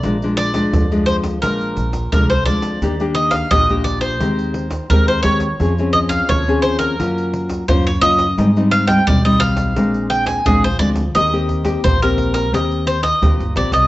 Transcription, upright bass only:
X:1
M:4/4
L:1/16
Q:1/4=86
K:Eb
V:1 name="Upright bass" clef=bass
B,,,4 F,,4 B,,,2 B,,,2 C,,2 D,,2 | E,,4 B,,,4 E,,4 E,,2 E,,2 | F,,4 E,,4 _G,,4 G,,2 G,,2 | A,,4 _C,,4 B,,,4 B,,,2 D,,2 |
E,,4 B,,,4 E,,4 E,, G,,, B,,, C,, |]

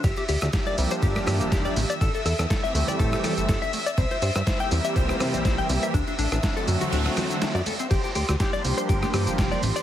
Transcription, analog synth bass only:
X:1
M:4/4
L:1/16
Q:"Swing 16ths" 1/4=122
K:Gdor
V:1 name="Analog synth bass" clef=bass
G,,, z D,, D,, z2 C,, z G,,, z G,, F,,, F,,, z A,,, z | A,,, z E,, E,, z2 D,, z A,, z2 G,,, G,,, z3 | C,, z G,, G,, z2 E,, z C,, z C, B,,, B,,, z C,, z | D,, z A,,, A,,, z2 ^F,, z D,,, z4 F,, z2 |
G,,, z D,, D,, z2 C,, z G,,, z G,, F,,, F,,, z A,,, z |]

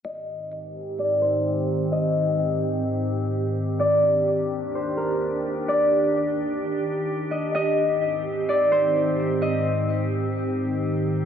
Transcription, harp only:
X:1
M:4/4
L:1/8
Q:1/4=128
K:Ablyd
V:1 name="Harp"
e4 d c z2 | e8 | d4 c B z2 | d6- d e |
e4 d c z2 | e8 |]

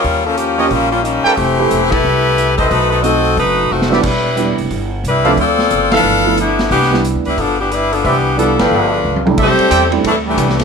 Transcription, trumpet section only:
X:1
M:4/4
L:1/8
Q:"Swing" 1/4=180
K:C
V:1 name="Trumpet section"
z3 [FG_d_e] z3 [GABg] | z6 z [ABc_e]- | [ABc_e]2 z4 z [GBd=e] | z6 z [Acdf] |
z3 [ABef] z4 | z8 | [Bcde] z2 [ABfg]3 z2 | [Acde] z [Acdg] z4 z |]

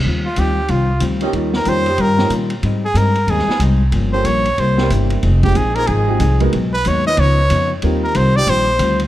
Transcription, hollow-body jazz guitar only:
X:1
M:4/4
L:1/8
Q:"Swing" 1/4=185
K:Eb
V:1 name="Hollow-body jazz guitar"
[E,G,CF] z [E,G,CF] z [E,G,CF] z [E,G,CF] z | [E,G,_DF] z [E,G,DF] z [E,G,DF] z [E,G,DF] z | [A,,G,CE] z [A,,G,CE] z [A,,G,CE] z [A,,G,CE] z | [G,,F,B,_D] z [G,,F,B,D] z [C,G,B,=E] z [C,G,B,E] z |
[F,CEA] z [F,CEA] z [F,CEA] z [F,CEA] z | [A,,_G,_CE] z [A,,G,CE] z [_D,F,CE] z [D,F,CE] z | [E,G,CF] z [E,G,CF] z [E,G,CF] z [E,G,CF] z |]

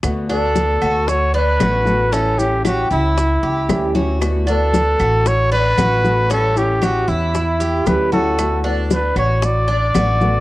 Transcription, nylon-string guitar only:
X:1
M:4/4
L:1/8
Q:1/4=115
K:D
V:1 name="Nylon-string guitar"
[D,A,B,F] [A,B,F]3 z2 [D,A,B,F] [A,B,F] | [E,G,CE] [G,CE]3 z2 [E,G,CE] [G,CE] | [D,A,B,F] [A,B,F]3 z2 [D,A,B,F] [A,B,F] | [E,G,CE] [G,CE]3 z2 [E,G,CE] [G,CE] |
[D,A,B,F] [A,B,F]3 z2 [D,A,B,F] [A,B,F] |]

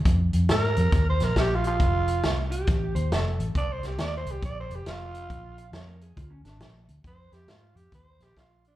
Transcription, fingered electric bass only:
X:1
M:4/4
L:1/8
Q:"Swing" 1/4=137
K:Bb
V:1 name="Fingered electric bass" clef=bass
F,, F,, _A,, F,, E,, B,,, B,,,2 | F,,,2 C,,2 A,,, E,, F,,, A,,, | C,, C,, E,, C,, B,,, F,,, F,,,2 | B,,,2 F,,2 D,, _A,,, B,,, D,, |
F,, F,, _A,, F,, E,, B,,, B,,,2 |]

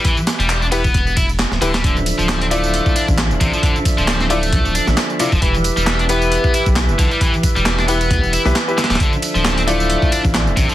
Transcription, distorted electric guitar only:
X:1
M:4/4
L:1/16
Q:"Swing 16ths" 1/4=134
K:Ddor
V:1 name="Distorted electric guitar" clef=bass
E, z2 G,2 D B,4 E z3 D, G, | D, z2 F,2 C A,4 D z3 C, F, | D, z2 F,2 C A,4 D z3 C, F, | E, z2 G,2 D B,4 E z3 D, G, |
E, z2 G,2 D B,4 E z3 D, G, | D, z2 F,2 C A,4 D z3 C, F, |]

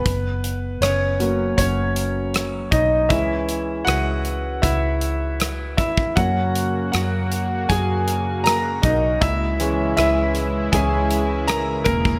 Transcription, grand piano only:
X:1
M:4/4
L:1/8
Q:1/4=79
K:F#mix
V:1 name="Grand piano"
[B,B]2 [Cc]2 [Cc]3 [Dd] | [Ee]2 [Ff]2 [Ee]3 [Ee] | [Ff]2 [Ff]2 [Gg]2 [Aa] [Dd] | [Ee]2 [Ee]2 [Gg]2 [Aa] [A,A] |]
V:2 name="Grand piano" clef=bass
z3 [F,A,C]4- [F,A,C] | [E,G,C]3 z4 z | [F,A,C]8 | z [E,G,C]3 [E,G,C] z3 |]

